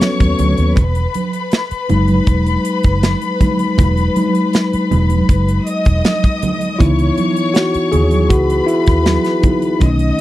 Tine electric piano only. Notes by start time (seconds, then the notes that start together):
Already playing: F#3 B3 C#4 F#4 A4
1.89 F#3 G#3 D#4
3.41 F#3 G#3 D#4
4.16 F#3 G#3 D#4
6.79 E3 B3 D#4 E4
7.54 F#4
7.92 G#4
8.29 F#4
8.66 E4
9.42 D#4
9.80 D#3 A3 C#4